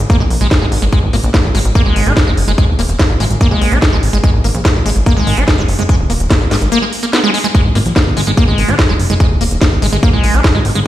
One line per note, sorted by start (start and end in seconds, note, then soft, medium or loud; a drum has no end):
0.10 0.16 A#3 loud
0.10 kick loud
0.10 closed hi-hat medium
0.20 0.26 A#1 medium
0.20 0.23 G#3 medium
0.30 0.37 A#1 loud
0.30 open hi-hat loud
0.41 0.47 A#1 medium
0.41 0.48 G#3 medium
0.41 closed hi-hat medium
0.51 kick loud
0.51 snare loud
0.51 closed hi-hat medium
0.61 0.68 G#1 medium
0.61 0.66 G#3 medium
0.72 0.78 G#1 loud
0.72 open hi-hat loud
0.82 0.88 G#1 medium
0.82 0.85 G#3 medium
0.82 closed hi-hat medium
0.93 0.99 G#3 medium
0.93 kick loud
0.93 closed hi-hat medium
1.03 1.09 G#1 medium
1.13 1.19 G#1 loud
1.13 1.16 A#3 medium
1.13 open hi-hat loud
1.24 1.30 A#1 loud
1.24 closed hi-hat medium
1.34 1.37 A#3 loud
1.34 kick loud
1.34 snare loud
1.34 closed hi-hat medium
1.44 1.50 G#1 medium
1.55 1.61 G#1 loud
1.55 1.59 G#3 medium
1.55 open hi-hat loud
1.65 1.71 G#1 loud
1.65 closed hi-hat medium
1.75 1.82 A#3 loud
1.75 kick loud
1.75 closed hi-hat medium
1.86 1.92 G#1 medium
1.86 2.08 G#3 medium
1.96 2.02 G#1 loud
1.96 open hi-hat loud
2.06 2.12 G#1 medium
2.06 2.13 D#4 medium
2.06 closed hi-hat medium
2.17 kick loud
2.17 snare loud
2.17 closed hi-hat medium
2.27 2.33 F#1 medium
2.27 2.31 G#3 medium
2.37 2.43 F#1 loud
2.37 open hi-hat loud
2.48 2.54 F#1 loud
2.48 2.52 G#3 medium
2.48 closed hi-hat medium
2.58 2.65 G#3 medium
2.58 kick loud
2.58 closed hi-hat medium
2.68 2.74 D#1 medium
2.79 2.85 D#1 loud
2.79 2.81 A#3 medium
2.79 open hi-hat loud
2.89 2.95 D#1 loud
2.89 closed hi-hat medium
2.99 3.02 A#3 loud
2.99 kick loud
2.99 snare loud
2.99 closed hi-hat medium
3.10 3.16 G#1 medium
3.20 3.26 G#1 loud
3.20 3.25 G#3 medium
3.20 open hi-hat loud
3.30 3.37 G#1 medium
3.30 closed hi-hat medium
3.41 3.48 A#3 loud
3.41 kick loud
3.41 closed hi-hat medium
3.51 3.57 A#1 medium
3.51 3.73 G#3 medium
3.62 3.68 A#1 loud
3.62 open hi-hat loud
3.72 3.78 A#1 medium
3.72 3.79 D#4 medium
3.72 closed hi-hat medium
3.82 kick loud
3.82 snare loud
3.82 closed hi-hat medium
3.93 3.99 G#1 medium
3.93 3.97 G#3 medium
4.03 4.09 G#1 loud
4.03 open hi-hat loud
4.13 4.19 G#1 medium
4.13 4.18 G#3 medium
4.13 closed hi-hat medium
4.24 4.30 G#3 medium
4.24 kick loud
4.24 closed hi-hat medium
4.34 4.40 G#1 medium
4.44 4.50 G#1 loud
4.44 4.47 A#3 medium
4.44 open hi-hat loud
4.55 4.61 A#1 medium
4.55 closed hi-hat medium
4.65 4.68 A#3 loud
4.65 kick loud
4.65 snare loud
4.65 closed hi-hat medium
4.75 4.81 G#1 medium
4.86 4.92 G#1 loud
4.86 4.90 G#3 medium
4.86 open hi-hat loud
4.96 5.02 G#1 medium
4.96 closed hi-hat medium
5.06 5.13 A#3 loud
5.06 kick loud
5.06 closed hi-hat medium
5.17 5.23 G#1 medium
5.17 5.39 G#3 medium
5.27 5.33 G#1 loud
5.27 open hi-hat loud
5.37 5.43 G#1 medium
5.37 5.44 D#4 medium
5.37 closed hi-hat medium
5.48 kick loud
5.48 snare loud
5.48 closed hi-hat medium
5.58 5.64 F#1 medium
5.58 5.63 G#3 medium
5.68 5.74 F#1 loud
5.68 open hi-hat loud
5.79 5.85 F#1 medium
5.79 5.83 G#3 medium
5.79 closed hi-hat medium
5.89 5.96 G#3 medium
5.89 kick loud
5.89 closed hi-hat medium
5.99 6.05 D#1 medium
6.10 6.16 D#1 loud
6.10 6.12 A#3 medium
6.10 open hi-hat loud
6.20 6.26 D#1 loud
6.20 closed hi-hat medium
6.30 6.33 A#3 loud
6.30 kick loud
6.30 snare loud
6.30 closed hi-hat medium
6.41 6.47 G#1 medium
6.51 6.57 G#1 loud
6.51 6.56 G#3 medium
6.51 snare medium
6.51 open hi-hat loud
6.62 6.68 G#1 medium
6.62 closed hi-hat medium
6.72 6.79 A#3 loud
6.72 closed hi-hat medium
6.82 6.85 G#3 medium
6.93 open hi-hat loud
7.03 7.06 A#3 medium
7.03 closed hi-hat medium
7.13 7.20 B3 medium
7.13 snare loud
7.13 closed hi-hat medium
7.24 7.30 G#3 loud
7.34 7.38 G#3 medium
7.34 open hi-hat loud
7.44 7.47 G#3 loud
7.44 closed hi-hat medium
7.55 7.61 G#3 medium
7.55 kick loud
7.55 closed hi-hat medium
7.65 7.71 G#1 medium
7.75 7.81 G#1 loud
7.75 7.78 A#3 medium
7.75 open hi-hat loud
7.86 7.92 A#1 loud
7.86 closed hi-hat medium
7.96 7.99 A#3 loud
7.96 kick loud
7.96 snare loud
7.96 closed hi-hat medium
8.06 8.12 G#1 medium
8.17 8.23 G#1 loud
8.17 8.21 G#3 medium
8.17 open hi-hat loud
8.27 8.33 G#1 medium
8.27 8.31 G#3 medium
8.27 closed hi-hat medium
8.37 8.44 A#3 loud
8.37 kick loud
8.37 closed hi-hat medium
8.48 8.54 G#1 medium
8.48 8.70 G#3 medium
8.58 8.64 G#1 loud
8.58 open hi-hat loud
8.68 8.74 G#1 medium
8.68 8.75 D#4 medium
8.68 closed hi-hat medium
8.79 kick loud
8.79 snare loud
8.79 closed hi-hat medium
8.89 8.95 F#1 medium
8.89 8.94 G#3 medium
8.99 9.06 F#1 loud
8.99 open hi-hat loud
9.10 9.16 F#1 medium
9.10 9.14 G#3 medium
9.10 closed hi-hat medium
9.20 9.27 G#3 medium
9.20 kick loud
9.20 closed hi-hat medium
9.30 9.37 D#1 medium
9.41 9.47 D#1 loud
9.41 9.43 A#3 medium
9.41 open hi-hat loud
9.51 9.57 D#1 loud
9.51 closed hi-hat medium
9.61 9.64 A#3 loud
9.61 kick loud
9.61 snare loud
9.61 closed hi-hat medium
9.72 9.78 G#1 medium
9.82 9.88 G#1 loud
9.82 9.87 G#3 medium
9.82 open hi-hat loud
9.92 9.99 G#1 loud
9.92 9.97 G#3 medium
9.92 closed hi-hat medium
10.03 10.10 A#3 loud
10.03 kick loud
10.03 closed hi-hat medium
10.13 10.19 A#1 medium
10.13 10.35 G#3 medium
10.24 10.30 A#1 loud
10.24 open hi-hat loud
10.34 10.40 A#1 medium
10.34 10.41 D#4 medium
10.34 closed hi-hat medium
10.44 kick loud
10.44 snare loud
10.44 closed hi-hat medium
10.55 10.61 G#1 medium
10.55 10.59 G#3 medium
10.65 10.71 G#1 loud
10.65 open hi-hat loud
10.75 10.81 G#1 medium
10.75 10.80 G#3 medium
10.75 closed hi-hat medium